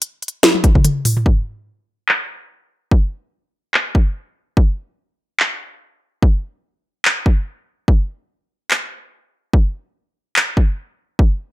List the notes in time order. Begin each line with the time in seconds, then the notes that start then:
0.02 closed hi-hat
0.22 closed hi-hat
0.28 closed hi-hat
0.43 snare, closed hi-hat, high tom
0.55 high tom
0.64 kick, closed hi-hat
0.75 kick, mid tom
0.85 closed hi-hat, mid tom
1.05 mid tom, open hi-hat
1.17 mid tom
1.26 kick
2.09 clap
2.91 kick
3.74 clap
3.95 kick
4.57 kick
5.40 clap
6.22 kick
7.05 clap
7.26 kick
7.88 kick
8.71 clap
9.53 kick
10.36 clap
10.57 kick
11.19 kick